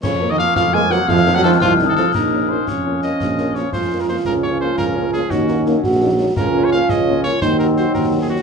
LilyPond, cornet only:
\new Staff \with { instrumentName = "Cornet" } { \time 6/8 \key bes \minor \tempo 4. = 114 des''8. ees''16 f''8 f''8 aes''8 ges''8 | f''8. ges''16 a'8 f'8. a'16 a'8 | bes'4 c''8 des''4 ees''8~ | ees''4 des''8 c''8. bes'16 c''8 |
bes'8 des''8 c''8 bes'4 aes'8 | ges'4 r2 | bes'8. des''16 f''8 ees''4 des''8 | c''8 bes'8 c''8 bes'8. aes'16 ges'8 | }